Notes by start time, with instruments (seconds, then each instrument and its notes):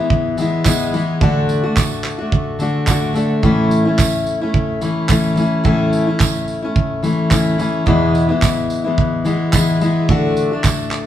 Already playing: steel-string acoustic guitar E4
0.00 steel-string acoustic guitar E3 G#3 B3
0.10 kick
0.37 steel-string acoustic guitar E3 G#3 B3 E4, tambourine
0.65 steel-string acoustic guitar E3 G#3 B3 E4, kick, clap, tambourine
0.93 steel-string acoustic guitar E3 G#3 B3 E4, tambourine
1.21 steel-string acoustic guitar D3 A3 D4 F#4, kick
1.49 tambourine
1.63 steel-string acoustic guitar A3 D4 F#4
1.77 kick, clap, tambourine
2.04 clap, tambourine
2.18 steel-string acoustic guitar A3 D4 F#4
2.32 kick
2.59 steel-string acoustic guitar D3 A3 D4 F#4, tambourine
2.87 steel-string acoustic guitar D3 A3 D4 F#4, kick, clap, tambourine
3.14 steel-string acoustic guitar D3 A3 D4 F#4, tambourine
3.43 steel-string acoustic guitar A2 E3 A3 C#4 E4, kick
3.71 tambourine
3.85 steel-string acoustic guitar A3 C#4 E4
3.99 kick, clap, tambourine
4.26 tambourine
4.41 steel-string acoustic guitar A3 C#4 E4
4.54 kick
4.81 steel-string acoustic guitar E3 A3 C#4 E4, tambourine
5.09 steel-string acoustic guitar E3 A3 C#4 E4, kick, clap, tambourine
5.36 steel-string acoustic guitar E3 A3 C#4 E4, tambourine
5.64 steel-string acoustic guitar A2 E3 A3 C#4 E4, kick
5.93 tambourine
6.07 steel-string acoustic guitar A3 C#4 E4
6.20 kick, clap, tambourine
6.48 tambourine
6.62 steel-string acoustic guitar A3 C#4 E4
6.76 kick
7.03 steel-string acoustic guitar E3 A3 C#4 E4, tambourine
7.30 steel-string acoustic guitar E3 A3 C#4 E4, kick, clap, tambourine
7.58 steel-string acoustic guitar E3 A3 C#4 E4, tambourine
7.86 steel-string acoustic guitar E2 B2 E3 G#3 B3 E4, kick
8.15 tambourine
8.29 steel-string acoustic guitar E3 G#3 B3 E4
8.42 kick, clap, tambourine
8.70 tambourine
8.84 steel-string acoustic guitar E3 G#3 B3 E4
8.98 kick
9.25 steel-string acoustic guitar E3 G#3 B3 E4, tambourine
9.52 steel-string acoustic guitar E3 G#3 B3 E4, kick, clap, tambourine
9.80 steel-string acoustic guitar E3 G#3 B3 E4, tambourine
10.08 steel-string acoustic guitar D3 A3 D4 F#4, kick
10.37 tambourine
10.51 steel-string acoustic guitar A3 D4 F#4
10.64 kick, clap, tambourine
10.91 clap, tambourine